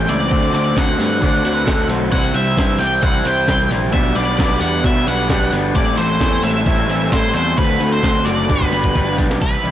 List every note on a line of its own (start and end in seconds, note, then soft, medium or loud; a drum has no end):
0.00 0.10 G5 loud
0.08 0.29 C#2 medium
0.08 0.29 A2 medium
0.08 0.29 E3 medium
0.08 0.29 G3 medium
0.08 0.29 A3 medium
0.08 0.31 C4 medium
0.08 0.30 E4 medium
0.08 0.32 C5 medium
0.08 0.51 D5 medium
0.08 open hi-hat medium
0.30 0.51 D2 loud
0.30 0.52 D3 loud
0.30 0.53 A3 medium
0.30 0.54 C4 loud
0.30 0.54 F#4 loud
0.30 0.55 C5 medium
0.30 kick loud
0.53 0.74 D2 medium
0.53 0.75 D3 medium
0.53 0.76 A3 medium
0.53 0.77 C4 medium
0.53 0.77 F#4 loud
0.53 0.78 C5 medium
0.53 0.75 D5 medium
0.53 open hi-hat medium
0.76 0.96 D2 medium
0.76 0.97 D3 loud
0.76 0.98 A3 loud
0.76 0.99 C4 loud
0.76 0.99 F#4 loud
0.76 1.00 C5 loud
0.76 1.86 F#5 loud
0.76 kick loud
0.76 snare loud
0.98 1.19 G2 medium
0.98 1.20 D3 medium
0.98 1.21 A3 medium
0.98 1.21 C4 medium
0.98 1.22 F#4 medium
0.98 1.22 C5 loud
0.98 open hi-hat medium
1.21 1.42 D3 medium
1.21 1.42 D3 loud
1.21 1.43 A3 loud
1.21 1.43 C4 loud
1.21 1.44 F#4 loud
1.21 1.44 C5 loud
1.21 1.56 D5 loud
1.21 kick loud
1.43 1.64 D2 medium
1.43 1.65 D3 medium
1.43 1.66 A3 medium
1.43 1.67 C4 medium
1.43 1.67 F#4 loud
1.43 1.67 C5 loud
1.43 open hi-hat medium
1.54 1.68 B4 medium
1.66 1.87 D2 medium
1.66 1.88 D3 medium
1.66 1.88 A3 loud
1.66 1.89 C4 loud
1.66 1.89 F#4 loud
1.66 2.00 A4 medium
1.66 1.90 C5 loud
1.66 kick loud
1.66 snare loud
1.89 2.09 B1 medium
1.89 2.10 D3 medium
1.89 2.11 A3 medium
1.89 2.11 C4 medium
1.89 2.11 F#4 medium
1.89 2.11 C5 medium
1.89 open hi-hat medium
2.12 2.32 C2 medium
2.12 2.34 C3 medium
2.12 2.34 E3 loud
2.12 2.36 G3 medium
2.12 2.35 C4 medium
2.12 2.36 E4 loud
2.12 2.36 C5 loud
2.12 2.35 F#5 loud
2.12 kick loud
2.12 crash loud
2.34 2.55 C2 medium
2.34 2.56 C3 medium
2.34 2.57 E3 medium
2.34 2.58 G3 medium
2.34 2.58 C4 medium
2.34 2.58 E4 medium
2.34 2.58 C5 loud
2.34 2.79 E5 medium
2.34 open hi-hat medium
2.57 2.77 G2 medium
2.57 2.79 C3 loud
2.57 2.79 E3 loud
2.57 2.81 G3 loud
2.57 2.80 C4 loud
2.57 2.81 E4 loud
2.57 2.81 C5 loud
2.57 kick loud
2.57 snare loud
2.79 3.00 C2 medium
2.79 3.01 C3 medium
2.79 3.02 E3 medium
2.79 3.03 G3 medium
2.79 3.03 C4 medium
2.79 3.03 E4 medium
2.79 3.04 C5 loud
2.79 3.01 G5 loud
2.79 open hi-hat medium
3.02 3.23 C2 loud
3.02 3.24 C3 medium
3.02 3.24 E3 loud
3.02 3.26 G3 medium
3.02 3.25 C4 loud
3.02 3.26 E4 loud
3.02 3.26 C5 loud
3.02 3.24 F#5 loud
3.02 kick loud
3.25 3.45 C2 medium
3.25 3.46 C3 medium
3.25 3.47 E3 medium
3.25 3.48 G3 medium
3.25 3.48 C4 medium
3.25 3.48 E4 medium
3.25 3.49 C5 loud
3.25 3.68 G5 loud
3.25 open hi-hat medium
3.48 3.68 C2 medium
3.48 3.68 C3 loud
3.48 3.69 E3 loud
3.48 3.71 G3 loud
3.48 3.70 C4 loud
3.48 3.70 E4 loud
3.48 3.71 C5 loud
3.48 kick loud
3.48 snare loud
3.70 3.93 A#1 medium
3.70 3.92 C3 medium
3.70 3.92 E3 medium
3.70 3.93 G3 medium
3.70 3.92 C4 medium
3.70 3.92 E4 medium
3.70 3.93 C5 loud
3.70 open hi-hat medium
3.92 4.14 B1 loud
3.92 4.13 B2 loud
3.92 4.15 G3 loud
3.92 4.15 B3 loud
3.92 4.16 D4 medium
3.92 4.15 F#4 loud
3.92 4.17 G4 medium
3.92 4.17 B4 loud
3.92 4.14 E5 loud
3.92 kick loud
4.14 4.36 B1 medium
4.14 4.36 B2 medium
4.14 4.37 G3 medium
4.14 4.38 B3 medium
4.14 4.39 D4 medium
4.14 4.37 F#4 medium
4.14 4.40 G4 medium
4.14 4.40 B4 loud
4.14 4.58 D5 medium
4.14 open hi-hat medium
4.37 4.59 B1 medium
4.37 4.59 B2 loud
4.37 4.61 G3 loud
4.37 4.60 B3 medium
4.37 4.61 D4 loud
4.37 4.61 F#4 medium
4.37 4.62 G4 loud
4.37 4.62 B4 loud
4.37 kick loud
4.37 snare loud
4.60 4.81 E2 medium
4.60 4.82 B2 medium
4.60 4.83 G3 medium
4.60 4.83 B3 medium
4.60 4.84 D4 medium
4.60 4.84 F#4 medium
4.60 4.84 G4 medium
4.60 4.85 B4 medium
4.60 4.82 F#5 loud
4.60 open hi-hat medium
4.83 5.05 B2 loud
4.83 5.04 B2 loud
4.83 5.05 G3 loud
4.83 5.06 B3 loud
4.83 5.06 D4 loud
4.83 5.07 F#4 loud
4.83 5.06 G4 loud
4.83 5.07 B4 loud
4.83 5.08 E5 loud
4.83 kick loud
5.06 5.27 B1 medium
5.06 5.27 B2 medium
5.06 5.28 G3 medium
5.06 5.27 B3 medium
5.06 5.28 D4 medium
5.06 5.29 F#4 medium
5.06 5.29 G4 medium
5.06 5.29 B4 loud
5.06 5.50 F#5 loud
5.06 open hi-hat medium
5.28 5.50 B1 medium
5.28 5.50 B2 medium
5.28 5.51 G3 loud
5.28 5.50 B3 medium
5.28 5.51 D4 loud
5.28 5.52 F#4 loud
5.28 5.52 G4 loud
5.28 5.52 B4 loud
5.28 kick loud
5.28 snare loud
5.51 5.72 G1 medium
5.51 5.73 B2 medium
5.51 5.74 G3 medium
5.51 5.73 B3 medium
5.51 5.74 D4 medium
5.51 5.74 F#4 medium
5.51 5.74 G4 medium
5.51 5.74 B4 medium
5.51 open hi-hat medium
5.74 5.95 A1 medium
5.74 5.95 A2 medium
5.74 5.96 E3 medium
5.74 5.96 G3 loud
5.74 5.96 A3 medium
5.74 5.97 C4 medium
5.74 5.97 E4 loud
5.74 5.98 A4 loud
5.74 5.97 D5 loud
5.74 kick loud
5.97 6.18 A1 medium
5.97 6.19 A2 medium
5.97 6.19 E3 medium
5.97 6.20 G3 medium
5.97 6.20 A3 medium
5.97 6.20 C4 medium
5.97 6.20 E4 loud
5.97 6.21 A4 loud
5.97 6.43 C5 medium
5.97 open hi-hat medium
6.20 6.41 E2 medium
6.20 6.42 A2 loud
6.20 6.42 E3 loud
6.20 6.43 G3 loud
6.20 6.43 A3 loud
6.20 6.43 C4 loud
6.20 6.44 E4 loud
6.20 6.44 A4 loud
6.20 kick loud
6.20 snare loud
6.43 6.64 A1 medium
6.43 6.64 A2 medium
6.43 6.65 E3 medium
6.43 6.66 G3 medium
6.43 6.65 A3 medium
6.43 6.66 C4 medium
6.43 6.66 E4 medium
6.43 6.67 A4 loud
6.43 7.08 E5 loud
6.43 open hi-hat medium
6.66 6.86 A1 loud
6.66 6.87 A2 loud
6.66 6.88 E3 loud
6.66 6.88 G3 loud
6.66 6.88 A3 loud
6.66 6.88 C4 loud
6.66 6.88 E4 medium
6.66 6.89 A4 loud
6.66 kick loud
6.88 7.09 A1 medium
6.88 7.10 A2 medium
6.88 7.10 E3 medium
6.88 7.11 G3 medium
6.88 7.11 A3 medium
6.88 7.11 C4 loud
6.88 7.12 E4 medium
6.88 7.13 A4 medium
6.88 open hi-hat medium
7.11 7.32 A1 medium
7.11 7.32 A2 loud
7.11 7.34 E3 medium
7.11 7.34 G3 medium
7.11 7.33 A3 medium
7.11 7.33 C4 medium
7.11 7.34 E4 loud
7.11 7.34 A4 loud
7.11 7.33 C5 medium
7.11 kick loud
7.11 snare loud
7.33 7.55 E2 medium
7.33 7.55 A2 medium
7.33 7.56 E3 medium
7.33 7.56 G3 loud
7.33 7.56 A3 medium
7.33 7.56 C4 medium
7.33 7.56 E4 medium
7.33 7.57 A4 loud
7.33 7.56 C5 medium
7.33 open hi-hat medium
7.57 7.78 D2 loud
7.57 7.79 D3 medium
7.57 7.79 A3 loud
7.57 7.80 C4 medium
7.57 7.81 F#4 medium
7.57 7.81 A4 medium
7.57 7.90 B4 medium
7.57 kick loud
7.80 8.01 D2 medium
7.80 8.02 D3 medium
7.80 8.02 A3 medium
7.80 8.03 C4 medium
7.80 8.03 F#4 medium
7.80 8.03 A4 loud
7.80 open hi-hat medium
7.93 8.28 C5 medium
8.03 8.23 D2 loud
8.03 8.25 D3 loud
8.03 8.24 A3 loud
8.03 8.26 C4 loud
8.03 8.27 F#4 loud
8.03 8.27 A4 loud
8.03 kick loud
8.03 snare loud
8.25 8.46 F#1 medium
8.25 8.48 D3 medium
8.25 8.47 A3 medium
8.25 8.48 C4 medium
8.25 8.49 F#4 medium
8.25 8.49 A4 medium
8.25 8.49 D5 medium
8.25 open hi-hat medium
8.49 8.70 G1 loud
8.49 8.71 G3 medium
8.49 8.72 B3 loud
8.49 8.72 D4 loud
8.49 8.72 F#4 loud
8.49 9.15 B4 medium
8.49 8.73 B4 loud
8.49 kick loud
8.61 kick medium
8.71 8.92 G1 medium
8.71 8.94 G3 loud
8.71 8.95 B3 loud
8.71 8.95 D4 medium
8.71 8.96 F#4 medium
8.71 8.96 B4 medium
8.71 open hi-hat medium
8.84 kick medium
8.95 9.16 G1 medium
8.95 9.17 G3 loud
8.95 9.18 B3 loud
8.95 9.18 D4 loud
8.95 9.17 F#4 medium
8.95 9.19 B4 loud
8.95 kick medium
9.18 9.39 B1 medium
9.18 9.40 G3 medium
9.18 9.40 B3 medium
9.18 9.40 D4 medium
9.18 9.40 F#4 medium
9.18 9.41 B4 loud
9.18 kick medium
9.18 open hi-hat medium
9.31 snare medium
9.41 9.56 C2 medium
9.41 9.71 C3 medium
9.41 9.71 E3 medium
9.41 9.71 G3 medium
9.41 9.71 C4 medium
9.41 9.71 E4 medium
9.41 9.71 B4 medium
9.41 muted clean electric guitar stroke soft
9.41 kick medium
9.63 9.71 C2 medium
9.63 9.71 E3 medium
9.63 9.71 G3 medium
9.63 9.71 D4 medium
9.63 9.71 E4 medium
9.63 closed hi-hat medium